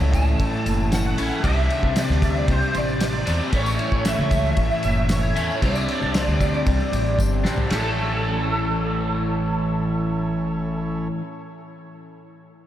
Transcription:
Already playing: A2 E3 A3 C#4 E4 A4 C#5
0.01 C#2
0.13 A5, kick, ride, tambourine
0.27 tambourine
0.39 A1, kick, ride, tambourine
0.54 tambourine
0.66 F#1, ride, tambourine
0.80 tambourine
0.92 F#5, snare, ride, tambourine
1.18 A1 A2 E3 A3 C#4 E4, ride, tambourine
1.32 tambourine
1.42 C2 C3 G3 C4 D4 G4 C5 E5, kick, ride, tambourine
1.70 ride, tambourine
1.83 C2, kick
1.96 D5, snare, ride, tambourine
2.10 D2, snare
2.22 D5, kick, ride, tambourine
2.31 E5
2.36 D5, tambourine
2.48 C2 C5, kick, ride, tambourine
2.62 tambourine
2.74 A1 D5, ride, tambourine
2.88 tambourine
3.00 D5, snare, ride, tambourine
3.26 E2 C3 G3 C4 D4, ride, tambourine
3.40 tambourine
3.52 A1 A2 E3 A3 C#4 E4 A4 C#5, kick, ride, tambourine
3.66 tambourine
3.79 ride, tambourine
3.92 A1, kick
4.05 E5, snare, ride, tambourine
4.19 C#2
4.31 kick, ride, tambourine
4.45 tambourine
4.57 A1 E5, kick, ride, tambourine
4.71 tambourine
4.83 F#1, ride, tambourine
4.97 tambourine
5.09 C#5, snare, ride, tambourine
5.35 E2 A2 E3 A3 C#4 E4, ride, tambourine
5.50 tambourine
5.61 C2 C3 G3 C4 D4 G4 C5 D5, kick, ride, tambourine
5.75 tambourine
5.88 ride, tambourine
6.02 C2, tambourine
6.14 snare, ride, tambourine
6.27 D2, tambourine
6.41 kick, ride, tambourine
6.54 tambourine
6.67 C2, kick, ride, tambourine
6.80 tambourine
6.92 A1, ride, tambourine
7.06 tambourine
7.19 G1, kick, tambourine
7.33 tambourine
7.44 A1 C3 G3 C4 D4, snare, tambourine
7.58 floor tom
7.69 A1 A2 E3 A3 C#4 E4 A4 C#5, snare, ride bell, tambourine
7.73 A4

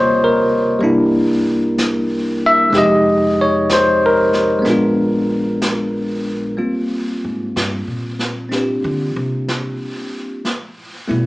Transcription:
Already playing: D#2 C3 G3 A#3 F4 C5 C#5 D#5
0.24 A#4
0.79 C2 G3 A#3 D4, brush sweep
0.84 E4
1.78 brush sweep, snare, hi-hat pedal
2.46 E5
2.70 F2 C3 G#3 D#4, brush sweep, snare
2.75 G4 D#5
3.41 C#5
3.70 C5, brush sweep, snare, hi-hat pedal
4.06 A#4
4.33 snare
4.59 G#3 B3
4.65 A#1 D4, brush sweep, snare
4.70 F4
5.62 brush sweep, snare, hi-hat pedal
6.57 G3 A#3 C4 F4, brush sweep
7.24 G#2
7.56 G2, brush sweep, snare
7.88 A#2
8.19 snare
8.49 C4 D4 F4 G4, brush sweep, snare
8.84 D3
9.16 C3
9.48 brush sweep, snare
10.45 brush sweep, snare
11.08 B2 G3 A3 B3 E4

